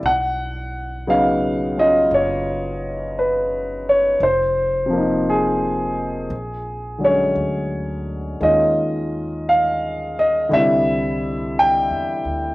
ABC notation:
X:1
M:4/4
L:1/8
Q:"Swing" 1/4=57
K:Cblyd
V:1 name="Grand piano"
^f2 =f ^d ^c2 =B c | =c2 A3 ^c3 | e2 f e =e2 =g2 |]
V:2 name="Grand piano"
z2 [^C,^F,=B,^D] [^C=F]4- [CF] | z [=C,F,B,E]3 z [=D,^F,A,^C]3 | [E,A,DF]4 [=D,=G,=C=E]4 |]
V:3 name="Upright bass" clef=bass
=B,,,4 ^F,,,4 | F,,,4 B,,,2 =D,,2 | E,,4 =C,,2- (3C,, =E,, =D,, |]